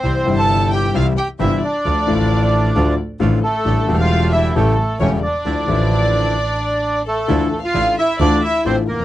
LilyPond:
<<
  \new Staff \with { instrumentName = "Violin section" } { \time 4/4 \key d \minor \tempo 4 = 133 c''8. a''8. g''8 f''8 g''8 e''8 d''8~ | d''2~ d''8 r4 a'8~ | a'8. f''8. e''8 a'4 cis''8 d''8~ | d''2.~ d''8 a'8~ |
a'8. f''8. e''8 d''8 e''8 c''8 bes'8 | }
  \new Staff \with { instrumentName = "Bandoneon" } { \time 4/4 \key d \minor <c' c''>8. <a' a''>8. <g' g''>8 <f' f''>8 <g' g''>8 <e' e''>8 <d' d''>8~ | <d' d''>2~ <d' d''>8 r4 <a a'>8~ | <a a'>8. <f' f''>8. <e' e''>8 <a a'>4 <cis' cis''>8 <d' d''>8~ | <d' d''>2.~ <d' d''>8 <a a'>8~ |
<a a'>8. <f' f''>8. <e' e''>8 <d' d''>8 <e' e''>8 <c' c''>8 <bes bes'>8 | }
  \new Staff \with { instrumentName = "Bandoneon" } { \time 4/4 \key d \minor <g c' e'>8 <g c' e'>4. <g c' e'>8 r8 <g c' e'>8 r8 | <a d' f'>8 <a d' f'>4. <a d' f'>8 r8 <a d' f'>8 r8 | <a d' g'>8 <a d' g'>4. <a cis' g'>8 r8 <a cis' g'>8 r8 | <f d' e'>8 <f d' e'>4. r2 |
<f d' e'>8 r8 <f d' e'>8 r8 <f d' e'>8 r8 <f d' e'>8 r8 | }
  \new Staff \with { instrumentName = "Grand piano" } { \clef bass \time 4/4 \key d \minor <c, c e g e'>8 <g,, g, c e g e'>4. <c, c e g e'>8 r8 <g,, g, c e g e'>8 r8 | <d, d f a f'>8 <a,, a, d f a f'>4. <d, d f a f'>8 r8 <a,, a, d f a f'>8 r8 | <a,, a, d g a e'>8 <e,, e, d g a d'>4. <a,, a, cis g a e'>8 r8 <e,, e, cis g a e'>8 r8 | <d, d f a e'>8 <a,, a, d f a e'>4. r2 |
<d, d e a d' f'>8 r8 <a,, a, e a d' f'>8 r8 <d, d e a d' f'>8 r8 <a,, a, e a d' f'>8 r32 e,32 f,32 r32 | }
  \new Staff \with { instrumentName = "Double bass" } { \clef bass \time 4/4 \key d \minor c,8 g,,4. c,8 r8 g,,8 r8 | d,8 a,,4. d,8 r8 a,,8 r8 | a,,8 e,,4. a,,8 r8 e,,8 r8 | d,8 a,,4. r2 |
d,8 r8 a,,8 r8 d,8 r8 a,,8 f,,8 | }
>>